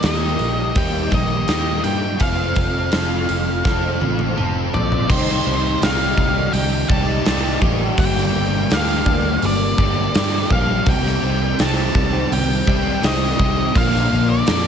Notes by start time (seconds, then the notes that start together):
Already playing: D#3
0.02 D#2 G3 A#3 D#4 G4 D#5, snare, open hi-hat
0.39 A#1, open hi-hat
0.74 D#2 D#3 G3 A#3 D#4 G4 G5, kick, open hi-hat
1.10 A#1 A#3 D#4 G4, kick, open hi-hat
1.14 D#5
1.47 D#2 G3 A#3 D#4 G4, snare, open hi-hat
1.84 G2 G5, open hi-hat
2.18 F1 F3 C4 F4 A4 F5, kick, open hi-hat
2.56 F1, kick, open hi-hat
2.91 F1 F3 C4 F4 A4, snare, open hi-hat
3.29 F1, open hi-hat
3.63 F1 F3 C4 F4 A4, kick, snare
4.00 A1 C4 F4 A4, high tom
4.19 high tom
4.35 F1 F3 C4 F4 A4, mid tom
4.74 A#1 D5, floor tom
4.92 floor tom
5.07 C2 C3 D#3 G3 D#4 G4 C5, kick, crash
5.29 snare
5.47 C2
5.80 C2 D#3 G3 D#4 G4 F5, snare, open hi-hat
6.17 C2, kick
6.53 C2 G5, open hi-hat
6.89 C2 C3 D#3 G3 D#4 G4 A5, kick
7.25 C2 D#3 G3 D#4 G4, snare, open hi-hat
7.61 A1 G3 D#4 G4, kick
7.97 G1 G2 D3 G3 A#3 D4 G4 G5, kick, open hi-hat
8.18 snare
8.36 G1
8.70 D2 G3 A#3 D4 G4, snare, open hi-hat
8.74 F5
9.06 D2, kick
9.42 G1 D5, open hi-hat
9.78 G1 G2 D3 G3 A#3 D4 G4, kick
10.14 G2 G3 A#3 D4 G4, snare, open hi-hat
10.50 A#1 G3 A#3 D4 G4 F5, kick
10.86 C2 C3 D#3 G3 C4 G4 G5, kick, open hi-hat
11.06 snare
11.23 C2
11.58 C2 D#3 G3 C4 G4 A5, snare, open hi-hat
11.95 C2, kick
12.32 C2 G5, open hi-hat
12.66 C2 C3 D#3 G3 C4 G4, kick
13.01 C2 D#3 G3 C4 G4 D#5, snare, open hi-hat
13.38 C2 G3 C4 G4, kick
13.74 A#1 A#2 D3 A#3 D4 F4 F5, kick, open hi-hat
13.95 snare
14.13 A#1
14.30 D5
14.46 F2 D3 A#3 D4 F4, snare, open hi-hat